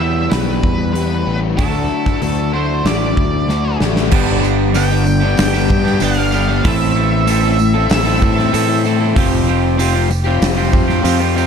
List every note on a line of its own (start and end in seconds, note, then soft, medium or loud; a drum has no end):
0.00 0.27 E2 loud
0.00 1.57 E2 medium
0.00 1.57 B2 medium
0.00 0.93 E3 medium
0.00 0.94 G3 medium
0.00 0.95 B3 medium
0.00 1.56 E4 medium
0.00 0.96 G4 medium
0.00 0.31 E5 medium
0.30 0.61 B1 medium
0.30 0.92 B4 loud
0.30 snare loud
0.30 open hi-hat medium
0.63 1.23 E2 medium
0.63 kick medium
0.93 1.27 E3 medium
0.93 1.26 G3 medium
0.93 1.25 B3 medium
0.93 1.24 G4 medium
0.93 1.38 B4 medium
0.93 open hi-hat soft
1.25 1.56 A1 medium
1.25 1.57 E3 medium
1.25 1.57 G3 medium
1.25 1.56 B3 medium
1.25 1.56 G4 medium
1.57 1.87 D2 medium
1.57 2.20 D3 medium
1.57 2.51 F#3 medium
1.57 2.21 A3 medium
1.57 2.22 D4 medium
1.57 2.52 E4 loud
1.57 2.23 F#4 loud
1.57 2.21 A4 medium
1.57 kick loud
1.57 open hi-hat soft
2.06 kick medium
2.06 snare soft
2.21 2.81 D2 medium
2.21 2.85 D3 medium
2.21 2.55 A3 medium
2.21 2.53 D4 medium
2.21 2.52 F#4 medium
2.21 2.53 A4 medium
2.21 open hi-hat soft
2.53 4.10 D3 medium
2.53 4.10 F#3 medium
2.53 3.48 A3 medium
2.53 3.49 D4 medium
2.53 4.10 E4 medium
2.53 3.50 F#4 medium
2.53 2.86 C5 medium
2.85 3.14 A1 medium
2.85 3.77 D5 medium
2.85 snare loud
2.85 open hi-hat soft
3.17 3.76 D2 medium
3.17 kick medium
3.48 4.10 D3 medium
3.48 3.82 A3 medium
3.48 3.81 D4 medium
3.48 3.79 F#4 medium
3.48 snare medium
3.80 4.09 A1 medium
3.80 4.12 A3 medium
3.80 4.11 D4 medium
3.80 4.10 F#4 medium
3.80 snare medium
3.96 snare medium
4.11 5.35 G1 loud
4.11 4.73 G2 medium
4.11 4.74 D3 medium
4.11 4.75 G3 medium
4.11 4.75 B3 loud
4.11 4.76 D4 loud
4.11 4.76 G4 loud
4.11 kick loud
4.11 crash loud
4.11 tambourine soft
4.42 4.73 G3 medium
4.42 4.74 B3 medium
4.42 4.74 D4 medium
4.42 4.74 G4 medium
4.42 tambourine medium
4.74 5.22 G2 medium
4.74 5.22 D3 medium
4.74 4.92 G3 loud
4.74 4.92 B3 loud
4.74 4.91 D4 loud
4.74 4.90 G4 loud
4.74 5.37 G5 loud
4.74 open hi-hat medium
4.74 tambourine loud
4.91 5.06 G3 medium
4.91 5.06 B3 medium
4.91 5.07 D4 medium
4.91 5.07 G4 medium
5.06 muted clean electric guitar stroke soft
5.06 muted overdriven electric guitar stroke soft
5.06 tambourine medium
5.23 5.55 G3 medium
5.23 5.54 B3 medium
5.23 5.54 D4 medium
5.23 5.52 G4 medium
5.37 5.67 G1 medium
5.37 6.03 G5 loud
5.37 snare loud
5.37 open hi-hat medium
5.37 tambourine medium
5.54 5.68 G3 medium
5.54 5.69 B3 medium
5.54 5.70 D4 medium
5.54 5.71 G4 medium
5.68 5.99 G2 loud
5.68 6.01 G3 medium
5.68 6.02 B3 medium
5.68 6.02 D4 medium
5.68 kick medium
5.68 tambourine soft
5.72 6.03 G4 medium
5.84 6.00 G3 medium
5.84 6.00 B3 medium
5.84 6.01 D4 medium
5.84 6.01 G4 medium
5.84 snare soft
6.00 6.60 G1 loud
6.00 6.48 G2 loud
6.00 6.49 D3 loud
6.00 6.19 G3 loud
6.00 6.18 B3 loud
6.00 6.18 D4 loud
6.00 6.16 G4 loud
6.00 6.67 F5 loud
6.00 open hi-hat medium
6.00 tambourine loud
6.18 6.32 G3 medium
6.18 6.33 B3 medium
6.18 6.34 D4 medium
6.18 6.35 G4 medium
6.32 6.50 G3 medium
6.32 6.49 B3 medium
6.32 6.48 D4 medium
6.32 tambourine medium
6.36 6.47 G4 loud
6.48 6.64 G3 medium
6.48 6.63 B3 medium
6.48 6.63 D4 medium
6.48 6.62 G4 medium
6.64 7.87 A1 loud
6.64 7.26 A2 loud
6.64 7.27 E3 loud
6.64 7.29 C4 loud
6.64 7.28 E4 loud
6.64 7.29 A4 loud
6.64 kick loud
6.64 open hi-hat medium
6.64 tambourine soft
6.68 7.90 E5 loud
6.94 7.25 E3 medium
6.94 7.27 C4 medium
6.94 7.26 E4 medium
6.94 7.27 A4 medium
7.27 7.74 A2 medium
7.27 7.58 E3 medium
7.27 7.45 C4 loud
7.27 7.43 E4 loud
7.27 7.41 A4 loud
7.27 open hi-hat medium
7.27 tambourine loud
7.42 7.59 C4 medium
7.42 7.59 E4 medium
7.42 7.59 A4 medium
7.58 muted clean electric guitar stroke soft
7.58 muted overdriven electric guitar stroke medium
7.58 tambourine medium
7.74 8.07 C4 medium
7.74 8.05 E4 medium
7.74 8.04 A4 medium
7.89 8.19 A1 medium
7.89 8.81 E5 medium
7.89 snare loud
7.89 open hi-hat medium
7.89 tambourine medium
8.05 8.22 C4 medium
8.05 8.22 E4 medium
8.05 8.23 A4 medium
8.21 8.51 A2 loud
8.21 8.52 E3 medium
8.21 8.54 C4 medium
8.21 8.53 E4 medium
8.21 8.54 A4 medium
8.21 kick medium
8.21 tambourine soft
8.36 8.53 C4 medium
8.36 8.52 E4 medium
8.36 8.53 A4 medium
8.36 snare soft
8.52 9.00 A2 loud
8.52 9.13 A2 loud
8.52 8.82 E3 loud
8.52 8.71 C4 loud
8.52 8.68 E4 loud
8.52 8.67 A4 loud
8.52 open hi-hat medium
8.52 tambourine loud
8.68 8.84 C4 medium
8.68 8.84 E4 medium
8.68 8.85 A4 medium
8.84 9.14 E3 medium
8.84 9.02 C4 medium
8.84 9.00 E4 medium
8.84 8.98 A4 medium
8.84 tambourine medium
8.99 9.17 C4 medium
8.99 9.15 E4 medium
8.99 9.14 A4 medium
9.16 10.38 F1 loud
9.16 9.77 F3 loud
9.16 9.78 C4 loud
9.16 9.80 F4 loud
9.16 9.80 G4 loud
9.16 kick loud
9.16 open hi-hat medium
9.16 tambourine soft
9.47 9.78 F3 medium
9.47 9.79 C4 medium
9.47 9.79 F4 medium
9.47 9.79 G4 medium
9.77 10.10 F3 loud
9.77 9.97 C4 loud
9.77 9.96 F4 loud
9.77 9.94 G4 loud
9.77 open hi-hat medium
9.77 tambourine medium
9.94 10.10 C4 medium
9.94 10.10 F4 medium
9.94 10.10 G4 medium
10.10 muted overdriven electric guitar stroke medium
10.10 muted clean electric guitar stroke soft
10.10 tambourine medium
10.24 10.57 C4 medium
10.24 10.56 F4 medium
10.24 10.56 G4 medium
10.42 10.71 F1 medium
10.42 snare loud
10.42 open hi-hat medium
10.42 tambourine medium
10.56 10.71 C4 medium
10.56 10.72 F4 medium
10.56 10.74 G4 medium
10.71 11.02 F2 loud
10.71 11.01 F3 medium
10.71 11.03 C4 medium
10.71 11.04 F4 medium
10.71 11.05 G4 medium
10.71 kick medium
10.71 tambourine soft
10.88 11.03 C4 medium
10.88 11.03 F4 medium
10.88 11.05 G4 medium
10.88 snare soft
11.03 11.47 F2 loud
11.03 11.34 F3 loud
11.03 11.22 C4 loud
11.03 11.20 F4 loud
11.03 11.19 G4 loud
11.03 open hi-hat medium
11.03 tambourine loud
11.20 11.35 C4 medium
11.20 11.37 F4 medium
11.20 11.38 G4 medium
11.35 11.47 F3 medium
11.35 11.47 C4 medium
11.35 11.47 F4 medium
11.35 11.47 G4 medium
11.35 tambourine medium